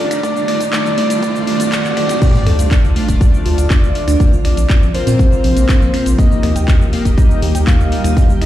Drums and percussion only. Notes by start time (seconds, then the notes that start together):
0.11 finger snap, closed hi-hat, shaker
0.23 kick, closed hi-hat, shaker
0.37 shaker
0.48 finger snap, open hi-hat
0.61 kick, closed hi-hat, shaker
0.73 kick, clap, closed hi-hat, shaker
0.86 shaker
0.98 open hi-hat
1.10 closed hi-hat, shaker
1.23 kick, closed hi-hat, shaker
1.36 shaker
1.47 open hi-hat
1.60 closed hi-hat, shaker
1.72 kick, clap, closed hi-hat, shaker
1.85 clap, shaker
1.97 finger snap, open hi-hat
2.09 finger snap, closed hi-hat, shaker
2.22 kick, closed hi-hat, crash, shaker
2.35 shaker
2.47 finger snap, open hi-hat
2.59 closed hi-hat, shaker
2.71 kick, clap, closed hi-hat, shaker
2.85 shaker
2.96 open hi-hat
3.08 kick, closed hi-hat, shaker
3.21 kick, closed hi-hat, shaker
3.34 shaker
3.46 open hi-hat
3.58 closed hi-hat, shaker
3.70 kick, clap, closed hi-hat, shaker
3.84 shaker
3.95 open hi-hat
4.08 finger snap, closed hi-hat, shaker
4.20 kick, closed hi-hat, shaker
4.33 shaker
4.45 finger snap, open hi-hat
4.57 closed hi-hat, shaker
4.70 kick, clap, closed hi-hat, shaker
4.83 shaker
4.94 open hi-hat
5.07 closed hi-hat, shaker
5.19 kick, closed hi-hat, shaker
5.32 shaker
5.44 open hi-hat
5.57 closed hi-hat, shaker
5.69 kick, clap, closed hi-hat, shaker
5.82 shaker
5.94 finger snap, open hi-hat
6.06 closed hi-hat, shaker
6.18 kick, closed hi-hat, shaker
6.32 shaker
6.43 finger snap, open hi-hat
6.56 closed hi-hat, shaker
6.68 kick, clap, closed hi-hat, shaker
6.81 shaker
6.93 open hi-hat
7.05 kick, closed hi-hat, shaker
7.18 kick, closed hi-hat, shaker
7.31 shaker
7.42 open hi-hat
7.55 closed hi-hat, shaker
7.67 kick, clap, closed hi-hat, shaker
7.80 shaker
7.92 open hi-hat
8.04 finger snap, closed hi-hat, shaker
8.17 kick, closed hi-hat, shaker
8.30 shaker
8.42 finger snap, open hi-hat